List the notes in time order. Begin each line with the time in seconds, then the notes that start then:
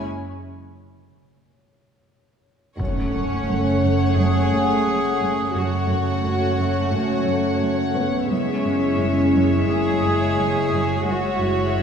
Already playing: C#5
2.79 F#1 F#2 A3 C#4 C#5 F#5, impact
3.14 F#2
3.49 F#2
3.84 F#2
4.17 F#2 G#4
4.53 F#2
4.87 F#2
5.21 F#2
5.54 F#1 F#2 A3 C#4 F#4 C#5 F#5
5.90 F#2
6.25 F#2
6.58 F#2
6.93 F#2
7.27 F#2
7.61 F#2
7.95 F#2 B3 B4
8.29 F#1 F#2 G#3 C#4 E4 C#5 E5
8.65 F#2
8.99 F#2
9.34 F#2
9.68 F#2 G#4
10.03 F#2
10.39 F#2
10.73 F#2
11.06 F#1 F#2 G#3 E4 F#4 C#5 E5
11.42 F#2 C#5
11.78 F#2